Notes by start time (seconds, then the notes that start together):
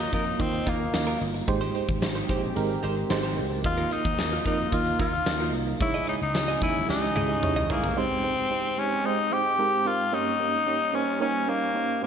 Already playing: D#3 A#3 D#4 F4 C#5 D#5
0.00 D#4 F4 A#4
0.12 F2 A#3 D#4 F4 A#4 D#5, kick, closed hi-hat, shaker
0.26 muted clean electric guitar stroke, shaker
0.39 D#2 A#3 C4 D#4 F4 D#5, kick, closed hi-hat, shaker
0.53 muted clean electric guitar stroke, shaker
0.66 D#2 A#3 D#4 F4 A#4 D#5, kick, closed hi-hat
0.80 muted clean electric guitar stroke, shaker
0.93 D#2 A#3 D#4 F4 D#5, muted clean electric guitar stroke, snare, closed hi-hat, shaker
1.07 D#4 F4 A#4, closed hi-hat, shaker
1.20 G1 A#3 D#4 F4 D#5, muted clean electric guitar stroke, open hi-hat, shaker
1.34 muted clean electric guitar stroke, shaker
1.47 G#1 G#2 G#3 C4 D#4 G4 C5, muted clean electric guitar stroke, kick, closed hi-hat, shaker
1.61 D#4 G4 C5, closed hi-hat, shaker
1.74 G#3 D#4 G4 C5, closed hi-hat, shaker
1.88 G#1, muted clean electric guitar stroke, kick, shaker
2.01 G#1 G#3 D#4 G4 C5, muted clean electric guitar stroke, snare, closed hi-hat, shaker
2.15 D#4 G4 C5, shaker
2.28 A#1 G#3 D#4 G4 C5, kick, closed hi-hat, shaker
2.42 muted clean electric guitar stroke, shaker
2.56 G#1 G#3 D#4 G4 A#4, closed hi-hat, shaker
2.69 muted clean electric guitar stroke, shaker
2.83 G#1 G#3 D#4 G4 C5, closed hi-hat
2.97 muted clean electric guitar stroke, shaker
3.10 G#1 G#3 D#4 G4 C5, muted clean electric guitar stroke, snare, closed hi-hat, shaker
3.23 D#4 G4 C5, closed hi-hat, shaker
3.37 C#2 G#3 D#4 G4 C5, muted clean electric guitar stroke, open hi-hat, shaker
3.51 muted clean electric guitar stroke, shaker
3.64 D#2 D#3 A#3 D#4 F4 D#5, muted clean electric guitar stroke, kick, closed hi-hat, shaker
3.78 D#4 F4 A#4, shaker
3.91 A#3 D#4 F4 A#4 D#5, closed hi-hat, shaker
4.05 D#2, muted clean electric guitar stroke, kick, shaker
4.18 D#2 A#3 D#4 F4 A#4, muted clean electric guitar stroke, snare, closed hi-hat, shaker
4.32 D#4 F4 A#4, shaker
4.45 F2 A#3 D#4 F4 A#4 D#5, kick, closed hi-hat, shaker
4.59 muted clean electric guitar stroke, shaker
4.72 D#2 A#3 D#4 F4 D#5, kick, closed hi-hat, shaker
4.86 muted clean electric guitar stroke, shaker
4.99 D#2 A#3 D#4 F4 A#4 D#5, kick, closed hi-hat
5.13 muted clean electric guitar stroke, shaker
5.26 D#2 A#3 D#4 F4 D#5, muted clean electric guitar stroke, snare, closed hi-hat, shaker
5.40 D#4 F4 A#4, shaker
5.53 C2 A#3 D#4 F4 D#5, muted clean electric guitar stroke, open hi-hat, shaker
5.67 muted clean electric guitar stroke, shaker
5.80 C#2 C#3 E3 G#3 C#4 D#4 E4 G#4 C#5, muted clean electric guitar stroke, kick, closed hi-hat, shaker
5.94 E4 G#4 D#5, shaker
6.07 G#3 D#4 E4 G#4 C#5 D#5, closed hi-hat, shaker
6.21 C#2 D#4, muted clean electric guitar stroke, shaker
6.34 C#2 G#3 D#4 E4 C#5, muted clean electric guitar stroke, snare, closed hi-hat, shaker
6.48 E4 G#4 D#5, shaker
6.61 D#2 G#3 D#4 E4 G#4 D#5, kick, closed hi-hat, shaker
6.75 muted clean electric guitar stroke, shaker
6.88 C#2 G#3 D#4 E4 G4, snare, shaker
7.02 muted clean electric guitar stroke, shaker
7.15 C#2 G#3 D#4 E4 G#4 C#5 D#5, high tom
7.29 E3 D#4 G#4, muted clean electric guitar stroke, shaker
7.42 C#2 G#3 D#4 E4 C#5, muted clean electric guitar stroke, mid tom, shaker
7.56 E4 G#4 D#5, mid tom, shaker
7.69 G1 E3 G#3 A#3 D#4 E4 G#4 C#5, floor tom, shaker
7.83 muted clean electric guitar stroke, floor tom, shaker
7.96 G#2 G#3 C4 D#4 G4 C5
8.23 G#3 C4 D#4 G4 C5
8.50 G#3 C4 D#4 G4 C5
8.77 G#3 C4 C#4 D#4 G4 C5
9.04 G#3 C4 D#4 G4 C5
9.31 G#3 C4 D#4 G4 C5
9.58 G#3 C4 D#4 G4 A#4
9.85 G#3 C4 D#4 F4 G4 A#4
10.12 G2 G3 A#3 C#4 D#4 G4 C#5
10.39 A#3 C#4 D#4 G4 C#5
10.66 A#3 C#4 D#4 G4 C#5
10.93 A#3 C#4 D#4 G4 C5
11.20 A#3 C#4 D#4 G4 C#5
11.47 A#3 C#4 D#4 G4 C#5
11.74 A#3 C#4 D#4 G4 C#5
12.02 G#2 G#3 A#3 C4 D#4 G4 C5